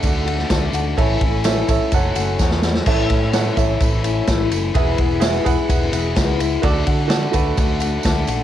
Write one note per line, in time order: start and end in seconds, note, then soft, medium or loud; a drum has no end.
0.00 0.43 D2 loud
0.00 0.27 D3 medium
0.00 0.97 A3 medium
0.00 0.27 A3 medium
0.00 0.97 D4 medium
0.00 0.97 F#4 medium
0.00 0.62 A4 medium
0.00 0.97 A4 medium
0.00 0.62 D5 medium
0.00 0.62 F#5 medium
0.00 kick loud
0.00 ride loud
0.00 tambourine medium
0.04 0.26 D4 medium
0.04 0.24 F#4 medium
0.25 0.49 A3 medium
0.25 0.50 D4 medium
0.25 0.50 F#4 medium
0.25 ride medium
0.39 snare soft
0.50 0.70 D2 medium
0.50 0.74 D3 medium
0.50 0.74 A3 medium
0.50 0.74 D4 loud
0.50 0.73 F#4 loud
0.50 kick medium
0.50 snare loud
0.50 ride medium
0.50 tambourine medium
0.73 0.93 D2 medium
0.73 0.97 A3 soft
0.73 0.98 D4 medium
0.73 0.98 F#4 medium
0.73 ride medium
0.73 tambourine medium
0.97 1.17 A1 loud
0.97 1.21 A2 medium
0.97 1.22 E3 medium
0.97 1.22 A3 medium
0.97 1.92 A3 medium
0.97 1.21 C#4 loud
0.97 1.92 C#4 medium
0.97 1.92 E4 medium
0.97 1.20 E4 loud
0.97 1.39 A4 medium
0.97 1.92 A4 medium
0.97 1.39 C#5 medium
0.97 1.39 E5 medium
0.97 kick loud
0.97 ride loud
0.97 tambourine soft
1.21 1.61 A1 loud
1.21 1.43 A3 soft
1.21 1.43 C#4 medium
1.21 1.44 E4 medium
1.21 kick medium
1.21 ride medium
1.44 1.68 A2 medium
1.44 1.68 E3 medium
1.44 1.68 A3 medium
1.44 1.68 C#4 medium
1.44 1.67 E4 medium
1.44 1.65 A4 medium
1.44 1.66 C#5 medium
1.44 1.66 E5 medium
1.44 snare loud
1.44 ride loud
1.44 tambourine medium
1.68 1.78 A1 medium
1.68 1.92 A3 medium
1.68 1.93 C#4 medium
1.68 1.92 E4 medium
1.68 1.92 A4 medium
1.68 1.93 C#5 medium
1.68 1.93 E5 medium
1.68 kick medium
1.68 ride medium
1.68 tambourine medium
1.92 2.12 F#1 medium
1.92 2.16 F#3 medium
1.92 2.16 A3 medium
1.92 2.86 A3 medium
1.92 2.85 C#4 medium
1.92 2.15 C#4 medium
1.92 2.86 F#4 medium
1.92 2.14 F#4 medium
1.92 2.85 A4 medium
1.92 2.75 A4 medium
1.92 2.75 C#5 medium
1.92 2.75 F#5 loud
1.92 kick loud
1.92 ride loud
1.92 tambourine medium
2.15 2.35 F#1 medium
2.15 2.39 F#3 medium
2.15 2.39 A3 medium
2.15 2.40 C#4 medium
2.15 2.39 F#4 medium
2.15 ride medium
2.15 tambourine medium
2.39 2.79 E2 medium
2.39 2.63 F#2 medium
2.39 2.63 C#3 medium
2.39 2.63 F#3 medium
2.39 2.63 A3 medium
2.39 2.62 C#4 medium
2.39 2.62 F#4 medium
2.39 kick medium
2.39 snare medium
2.39 tambourine loud
2.51 snare medium
2.62 2.86 F#3 soft
2.62 2.85 A3 soft
2.62 2.86 C#4 medium
2.62 2.86 F#4 medium
2.62 snare medium
2.62 tambourine medium
2.74 snare medium
2.86 3.06 A1 loud
2.86 3.10 A2 medium
2.86 3.10 E3 medium
2.86 3.10 A3 medium
2.86 4.73 A3 medium
2.86 4.73 C#4 medium
2.86 3.09 C#4 medium
2.86 4.73 E4 medium
2.86 3.08 E4 loud
2.86 3.27 A4 medium
2.86 4.73 A4 medium
2.86 3.28 C#5 medium
2.86 3.28 E5 loud
2.86 kick loud
2.86 tambourine soft
2.86 crash loud
3.09 3.49 A2 loud
3.09 3.33 A3 soft
3.09 3.33 C#4 medium
3.09 3.33 E4 medium
3.09 kick medium
3.09 ride medium
3.09 tambourine soft
3.33 3.57 A2 medium
3.33 3.57 E3 medium
3.33 3.57 A3 medium
3.33 3.56 C#4 medium
3.33 3.55 E4 medium
3.33 3.54 A4 medium
3.33 3.54 C#5 medium
3.33 3.55 F#5 medium
3.33 snare loud
3.33 ride medium
3.33 tambourine loud
3.56 3.77 A1 medium
3.56 3.80 A3 medium
3.56 3.80 C#4 medium
3.56 3.80 E4 medium
3.56 4.39 A4 medium
3.56 4.39 C#5 medium
3.56 4.39 E5 loud
3.56 kick medium
3.56 ride medium
3.56 tambourine medium
3.80 4.20 A1 loud
3.80 4.04 E3 medium
3.80 4.04 A3 medium
3.80 4.03 C#4 medium
3.80 4.02 E4 medium
3.80 kick loud
3.80 ride loud
3.80 tambourine medium
4.04 4.27 A3 soft
4.04 4.28 C#4 medium
4.04 4.28 E4 medium
4.04 ride medium
4.04 tambourine medium
4.27 4.48 A1 medium
4.27 4.51 A2 loud
4.27 4.52 E3 medium
4.27 4.51 A3 medium
4.27 4.50 C#4 medium
4.27 4.49 E4 loud
4.27 kick medium
4.27 snare loud
4.27 ride medium
4.27 tambourine loud
4.50 4.71 F#1 medium
4.50 4.75 A3 medium
4.50 4.75 C#4 medium
4.50 4.74 E4 medium
4.50 ride medium
4.50 tambourine medium
4.74 4.95 E1 loud
4.74 4.98 E2 medium
4.74 4.98 B2 medium
4.74 4.99 E3 medium
4.74 6.61 G#3 medium
4.74 4.99 G#3 medium
4.74 6.61 B3 medium
4.74 4.98 B3 loud
4.74 6.61 E4 medium
4.74 4.97 E4 medium
4.74 5.16 G#4 medium
4.74 6.62 G#4 medium
4.74 5.16 B4 medium
4.74 5.17 E5 medium
4.74 kick loud
4.74 ride loud
4.74 tambourine soft
4.98 5.38 E1 loud
4.98 5.22 E3 soft
4.98 5.21 G#3 medium
4.98 5.22 B3 medium
4.98 5.22 E4 medium
4.98 kick medium
4.98 ride medium
5.20 5.45 E2 medium
5.20 5.46 B2 medium
5.20 5.46 E3 medium
5.20 5.46 G#3 medium
5.20 5.45 B3 medium
5.20 5.45 E4 medium
5.20 5.42 G#4 medium
5.20 5.42 B4 medium
5.20 5.42 E5 medium
5.20 snare loud
5.20 ride loud
5.20 tambourine medium
5.44 5.56 E1 medium
5.44 5.67 E3 medium
5.44 5.68 G#3 medium
5.44 5.69 B3 medium
5.44 5.69 E4 medium
5.44 6.27 G#4 medium
5.44 6.28 B4 medium
5.44 6.28 F#5 loud
5.44 kick medium
5.44 ride medium
5.44 tambourine medium
5.68 5.89 E1 medium
5.68 5.92 E3 medium
5.68 5.93 G#3 medium
5.68 5.92 B3 medium
5.68 5.91 E4 medium
5.68 kick loud
5.68 ride loud
5.68 tambourine medium
5.92 6.12 E1 loud
5.92 6.15 E3 soft
5.92 6.15 G#3 medium
5.92 6.15 B3 medium
5.92 6.16 E4 medium
5.92 ride medium
5.92 tambourine medium
6.15 6.56 C#2 medium
6.15 6.39 E2 medium
6.15 6.39 B2 medium
6.15 6.40 E3 loud
6.15 6.40 G#3 loud
6.15 6.39 B3 loud
6.15 6.38 E4 loud
6.15 kick medium
6.15 snare loud
6.15 ride loud
6.15 tambourine medium
6.40 6.63 E3 medium
6.40 6.64 G#3 soft
6.40 6.64 B3 medium
6.40 6.63 E4 medium
6.40 ride medium
6.40 tambourine medium
6.62 6.83 D2 loud
6.62 6.87 D3 medium
6.62 6.88 A3 loud
6.62 8.43 A3 medium
6.62 6.87 D4 loud
6.62 8.43 D4 medium
6.62 7.04 F#4 medium
6.62 6.86 F#4 loud
6.62 8.43 F#4 medium
6.62 7.04 A4 medium
6.62 8.43 A4 medium
6.62 7.05 D5 loud
6.62 kick loud
6.62 ride loud
6.62 tambourine soft
6.87 7.26 D3 loud
6.87 7.11 A3 soft
6.87 7.11 D4 medium
6.87 7.11 F#4 medium
6.87 kick medium
6.87 ride medium
6.87 tambourine soft
7.08 7.34 D3 medium
7.08 7.35 A3 medium
7.08 7.30 F#4 medium
7.08 7.30 A4 medium
7.08 7.31 D5 medium
7.08 snare loud
7.08 ride loud
7.08 tambourine medium
7.12 7.34 D4 medium
7.12 7.33 F#4 medium
7.32 7.54 D2 medium
7.32 7.58 D4 medium
7.32 8.15 F#4 medium
7.32 7.58 F#4 medium
7.32 8.16 A4 medium
7.32 8.16 B4 loud
7.32 kick medium
7.32 ride medium
7.32 tambourine medium
7.37 7.57 A3 medium
7.57 7.97 D2 loud
7.57 7.81 D3 medium
7.57 7.81 A3 medium
7.57 7.81 D4 medium
7.57 7.79 F#4 medium
7.57 kick loud
7.57 ride loud
7.57 tambourine medium
7.80 8.04 A3 medium
7.80 8.04 D4 medium
7.80 8.04 F#4 medium
7.80 ride medium
7.80 tambourine medium
8.03 8.25 D2 medium
8.03 8.28 D3 medium
8.03 8.28 A3 medium
8.03 8.28 D4 medium
8.03 8.27 F#4 loud
8.03 kick medium
8.03 snare loud
8.03 ride loud
8.03 tambourine loud
8.27 8.43 A#1 medium
8.27 8.43 A3 medium
8.27 8.43 D4 medium
8.27 8.43 F#4 medium
8.27 ride medium
8.27 tambourine medium